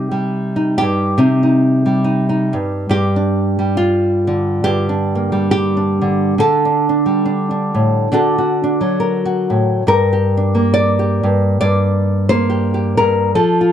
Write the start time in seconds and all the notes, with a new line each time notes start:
Already playing: C3 G3 D#4 G4
0.11 G3
0.56 D#4
0.78 G2 G4
1.18 C3 C4 D#4
1.43 D#4
1.86 G3
2.04 D#4
2.29 D#4
2.53 G2
2.89 G2 G4
3.16 D4
3.59 G3
3.77 F4
4.27 D3
4.64 G2 G4
4.89 D4
5.15 A#3
5.32 G3
5.51 G4
5.77 D4
6.01 D3
6.38 D3 A4
6.65 D4
6.89 D4
7.06 G3
7.25 D4
7.51 D4
7.75 A2
8.12 D3 D4 F#4 A4
8.38 F#4
8.64 D4
8.81 F#3
9.00 A#4
9.25 F#4
9.50 A2
9.87 G2 A#4
10.13 G4
10.37 D4
10.55 A#3
10.74 D5
10.99 G4
11.23 G2
11.61 G2 D5
12.29 A#3 C5
12.50 G4
12.74 G4
12.97 G2 A#4
13.35 F3 A4
13.61 F4